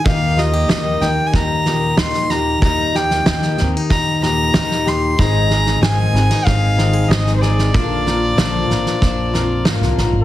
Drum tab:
SD |o-o-o-o-o-o-ooo-|o-ooooo-o-o-ooo-|o-ooo-ooo-o-oooo|o-o-o-ooo-o-ooo-|
BD |o-------o-------|o-------o-------|o-------o-------|o-------o-------|